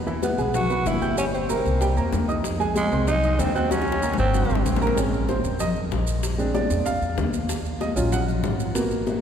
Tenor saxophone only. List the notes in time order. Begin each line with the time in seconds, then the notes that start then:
0.24 B3
0.55 F#4
0.87 E4
1.18 C#4
1.35 C4
2.77 G#3
3.08 D#4
3.40 C4
3.56 C4
3.71 C#4
4.19 C4